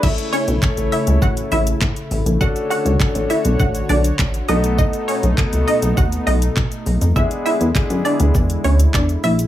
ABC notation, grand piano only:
X:1
M:4/4
L:1/16
Q:1/4=101
K:A
V:1 name="Grand piano"
[A,CEAc]4 [A,CEAc]6 z6 | [A,CDFA]4 [A,CDFA]6 z4 [A,B,^DFA]2- | [A,B,^DFA]3 z [A,B,DFA]6 z6 | [G,B,DEG]4 [G,B,DEG]6 z6 |]